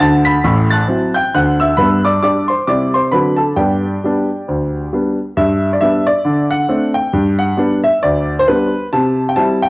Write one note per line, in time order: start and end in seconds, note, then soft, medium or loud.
0.00 0.35 D2 medium
0.00 0.36 D3 medium
0.00 0.25 A5 medium
0.00 0.22 A6 medium
0.25 0.68 B5 medium
0.25 0.64 B6 medium
0.44 0.80 A1 medium
0.44 0.80 A2 medium
0.70 1.13 A5 medium
0.70 1.13 F#6 medium
0.70 1.09 A6 medium
0.88 1.13 F#3 soft
0.88 1.13 C4 soft
0.88 1.13 E4 soft
1.14 1.33 G5 medium
1.14 1.30 G6 medium
1.34 1.70 D2 medium
1.34 1.70 D3 medium
1.34 1.59 F#5 medium
1.34 1.57 F#6 medium
1.60 1.78 E5 medium
1.60 1.76 E6 medium
1.77 2.16 G2 medium
1.77 2.04 B3 soft
1.77 2.03 B4 soft
1.77 2.00 B5 medium
2.05 2.22 D5 medium
2.05 2.20 D6 medium
2.23 2.47 G3 soft
2.23 2.48 D4 soft
2.23 2.48 G4 soft
2.23 2.48 D5 medium
2.23 2.45 D6 medium
2.48 2.67 C5 soft
2.48 2.64 C6 medium
2.67 3.06 C3 medium
2.67 2.92 G3 soft
2.67 2.93 C4 soft
2.67 2.94 E4 soft
2.67 2.93 D5 medium
2.67 2.90 D6 medium
2.94 3.12 C5 medium
2.94 3.10 C6 medium
3.12 3.50 D3 soft
3.12 3.37 F#3 soft
3.12 3.38 C4 soft
3.12 3.38 D4 soft
3.12 3.38 F#4 soft
3.12 3.38 B4 soft
3.12 3.35 B5 medium
3.37 3.56 A4 soft
3.37 3.53 A5 medium
3.57 3.95 G2 medium
3.57 3.83 B3 soft
3.57 5.14 G4 soft
3.57 5.14 D5 soft
3.57 4.93 G5 medium
4.04 4.28 G3 soft
4.04 4.29 B3 soft
4.04 4.29 D4 soft
4.48 4.86 D2 soft
4.93 5.17 G3 soft
4.93 5.17 B3 soft
4.93 5.18 D4 soft
5.37 5.75 G2 medium
5.37 5.67 E5 medium
5.73 5.82 D5 medium
5.81 6.06 G3 soft
5.81 6.06 B3 soft
5.81 6.06 D4 soft
5.81 6.03 E5 medium
6.07 6.45 D5 medium
6.25 6.63 D3 medium
6.50 6.89 F#5 medium
6.68 6.93 A3 soft
6.68 6.94 C4 soft
6.68 6.94 D4 soft
6.94 7.33 G5 medium
7.13 7.52 G2 medium
7.39 7.78 F#5 medium
7.57 7.83 G3 soft
7.57 7.82 B3 soft
7.57 7.83 D4 soft
7.84 8.00 E5 medium
8.03 8.42 D2 medium
8.03 8.33 D5 medium
8.39 8.48 C5 medium
8.48 8.73 G3 soft
8.48 8.73 B3 soft
8.48 8.73 D4 soft
8.48 8.86 B4 medium
8.93 9.31 C3 medium
8.93 9.23 A5 medium
9.29 9.38 G5 medium
9.36 9.62 G3 soft
9.36 9.61 C4 soft
9.36 9.62 E4 soft
9.36 9.59 A5 medium
9.62 9.69 G5 medium